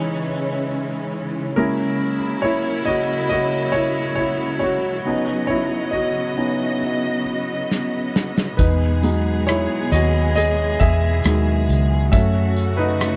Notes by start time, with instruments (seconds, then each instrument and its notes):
Already playing: string section C#3 E3 G#3 C#4, grand piano E3 C#4 D#4 E4 G#4 B4 C#5 E5
1.56 string section F#3 A#3 E4, grand piano G#3 A#3 C#4 E4 A#4
2.42 grand piano E4 C#5
2.85 grand piano F#4 D#5
3.29 grand piano F#4 D#5
3.72 grand piano E4 C#5
4.15 grand piano E4 C#5
4.59 grand piano F#4 C#5
5.06 grand piano B3 C#4 D#4, string section B3 D#5
5.47 grand piano E4 C#5
5.91 grand piano F#4 D#5
6.37 grand piano B3 C#4 D#4
7.71 snare
8.16 snare
8.38 snare
8.57 fingered electric bass E2, string section B2 G#3 G#4, grand piano D#4 B4, kick, closed hi-hat
9.03 grand piano F#3 G#3 D#4, closed hi-hat
9.47 grand piano E4 C#5, cross-stick, closed hi-hat
9.92 fingered electric bass D#2, grand piano F#4 D#5, closed hi-hat
10.36 grand piano G#4 D#5, closed hi-hat
10.80 fingered electric bass E2, grand piano G#4 E5, kick, closed hi-hat
11.24 fingered electric bass D#2, grand piano D#3 F#3 G#3, cross-stick, closed hi-hat
11.69 fingered electric bass C#2, closed hi-hat
12.12 fingered electric bass F#2, string section C#3 F#3 A3 F#4, grand piano F#3 A3 C#4 A4 E5, kick, closed hi-hat
12.56 closed hi-hat
12.77 grand piano D#4 B4
13.00 cross-stick, closed hi-hat